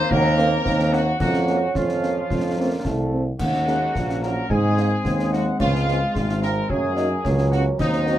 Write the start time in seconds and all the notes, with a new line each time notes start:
Already playing: A#3 C4 C6
0.10 D#2 F#3 A#4 A#5, concert bass drum
0.37 A#3 C4, snare
0.65 D#2 C4, concert bass drum, snare
0.79 snare
0.92 A#3 C4 F#4 F#5, snare
1.19 F2 A#3 C#4 F#4 F#5, concert bass drum, snare, crash
1.33 snare
1.47 A#3 C#4, snare
1.75 F2 F3 F4 F5, concert bass drum, snare
1.89 snare
2.03 A#3 C#4, snare
2.30 F2, concert bass drum, snare
2.57 A3 A#3 C4
2.85 C2 A3, concert bass drum, snare
3.12 A3 C4
3.39 D#2 A#3 C#4 F#4 F#5, concert bass drum, snare, crash
3.54 snare
3.67 G#3 A#3 C#4 D#4, snare
3.94 A#1 A#3, concert bass drum, snare
4.09 snare
4.21 F#3 A#3 C#4 D#4 A#4 A#5, snare
4.49 G#2 G#3 C4 G#4 G#5, concert bass drum
4.77 G#3 A#3 C4 D#4, snare
5.04 D#2 C4, concert bass drum, snare
5.19 snare
5.31 G#3 C4 D#4 F#4 F#5, snare
5.59 C#2 C#4 F4 F5, concert bass drum, snare, crash
5.75 snare
5.85 G#3 A#3 C4 F4, snare
6.14 G#1 G#3, concert bass drum, snare
6.29 snare
6.40 G#3 C4 F4 A#4 A#5, snare
6.69 F#2 F#3 A#3 C#4 G#4 G#5, concert bass drum
6.96 F#3 A#3 C#4 D#4, snare
7.24 C#2 C#4, concert bass drum, snare
7.38 snare
7.52 F#3 A#3 C#4 F#4 F#5, snare
7.78 D#2 C4 D#4 D#5, concert bass drum, snare, crash
7.93 snare
8.07 F#3 A#3 C4 D#4, snare